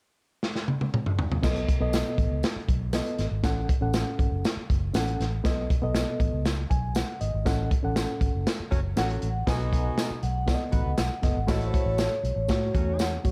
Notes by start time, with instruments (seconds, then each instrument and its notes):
0.43 snare
0.56 snare
0.68 high tom
0.81 high tom
0.94 mid tom
1.06 mid tom
1.19 floor tom
1.32 floor tom
1.42 fingered electric bass B1, reed electric piano B2 B3 A4 D#5, kick, snare, crash, tambourine
1.56 closed hi-hat
1.69 kick, closed hi-hat
1.80 fingered electric bass B1, reed electric piano B3 A4 D#5
1.93 snare, closed hi-hat, tambourine
2.18 fingered electric bass A1, kick, closed hi-hat
2.32 fingered electric bass C#2
2.43 snare, closed hi-hat, tambourine
2.56 muted fingered electric bass stroke
2.69 fingered electric bass B1, kick, closed hi-hat
2.93 reed electric piano B3 A4 D#5, snare, closed hi-hat, tambourine
3.06 closed hi-hat
3.19 fingered electric bass G#1, snare, closed hi-hat
3.31 fingered electric bass G#1
3.43 fingered electric bass A1, reed electric piano A2 C#4 A4 F#5, kick, snare, closed hi-hat, tambourine
3.69 kick, closed hi-hat
3.81 fingered electric bass A1, reed electric piano C#4 A4 F#5
3.93 snare, closed hi-hat, tambourine
4.19 fingered electric bass G#1, kick, closed hi-hat
4.32 fingered electric bass F#1
4.45 snare, closed hi-hat, tambourine
4.57 muted fingered electric bass stroke
4.70 fingered electric bass F#1, kick, closed hi-hat
4.93 fingered electric bass A1, reed electric piano C#4 A4 F#5, snare, closed hi-hat, tambourine
5.07 closed hi-hat
5.20 fingered electric bass A1, snare, closed hi-hat
5.44 fingered electric bass B1, reed electric piano B2 B3 A4 D#5, kick, snare, closed hi-hat, tambourine
5.70 kick, closed hi-hat
5.82 fingered electric bass B1, reed electric piano B3 A4 D#5
5.95 snare, closed hi-hat, tambourine
6.20 fingered electric bass A1, kick, closed hi-hat
6.33 fingered electric bass C#2
6.45 snare, closed hi-hat, tambourine
6.70 fingered electric bass B1, reed electric piano G#5, kick, closed hi-hat
6.95 reed electric piano F#5, snare, closed hi-hat, tambourine
7.21 fingered electric bass G#1, reed electric piano D#5, closed hi-hat
7.34 fingered electric bass G#1
7.45 fingered electric bass A1, reed electric piano A2 C#4 A4 F#5, kick, snare, closed hi-hat, tambourine
7.71 kick, closed hi-hat
7.83 fingered electric bass A1, reed electric piano C#4 A4 F#5
7.96 snare, closed hi-hat, tambourine
8.21 fingered electric bass G#1, kick, closed hi-hat
8.35 fingered electric bass F#1
8.47 snare, closed hi-hat, tambourine
8.60 muted fingered electric bass stroke
8.71 fingered electric bass F#1, horn section F#3 A3 C#4 F#4, kick, closed hi-hat
8.96 fingered electric bass A1, horn section F#3 A3 C#4 F#4, reed electric piano C#4 A4 F#5, vibraphone F#5, snare, closed hi-hat, tambourine
9.10 closed hi-hat
9.22 fingered electric bass A1, closed hi-hat
9.47 fingered electric bass B1, reed electric piano B2 B3 A4 D#5, horn section F#3 B3 D#4 F#4, vibraphone G#5, kick, snare, closed hi-hat, tambourine
9.59 closed hi-hat
9.73 kick, closed hi-hat
9.98 snare, closed hi-hat, tambourine
10.11 muted fingered electric bass stroke
10.23 fingered electric bass B1, vibraphone F#5, closed hi-hat
10.47 reed electric piano B3 A4 D5, kick, snare, closed hi-hat, tambourine
10.54 reed electric piano D#5
10.71 fingered electric bass A1, horn section B3 D#4 F#4 B4, kick, closed hi-hat
10.86 fingered electric bass C#2
10.98 fingered electric bass B1, vibraphone F#5, snare, closed hi-hat, tambourine
11.22 fingered electric bass F#1, reed electric piano B3 A4 D#5, kick, snare, closed hi-hat
11.37 fingered electric bass G#1
11.47 fingered electric bass A1, reed electric piano A2 A3 F#4 C#5, horn section A3 E4 F#4 A4, vibraphone D#5, kick, snare, closed hi-hat, tambourine
11.61 closed hi-hat
11.66 vibraphone C5
11.73 vibraphone C#5, kick, closed hi-hat
11.86 fingered electric bass A1
11.98 snare, closed hi-hat, tambourine
12.23 fingered electric bass B1, closed hi-hat
12.36 fingered electric bass A1
12.48 fingered electric bass A2, reed electric piano A3 F#4 C#5, kick, snare, closed hi-hat, tambourine
12.73 fingered electric bass E2, horn section F#3 A3 C#4 F#4, kick, closed hi-hat
12.99 vibraphone F#5, snare, closed hi-hat, tambourine
13.24 fingered electric bass A1, reed electric piano A3 F#4 C#5, kick, closed hi-hat